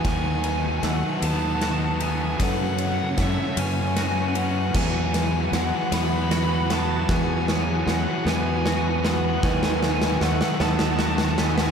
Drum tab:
CC |------------|------------|x-----------|------------|
RD |x-x-x-x-x-x-|x-x-x-x-x-x-|--x-x-x-x-x-|------------|
SD |o---o---o---|o---o---o---|o-o-o-o-o-o-|o-o-o-o-o-o-|
BD |o-----------|o---o-------|o-----------|o-----------|

CC |------------|
RD |------------|
SD |oooooooooooo|
BD |o-----------|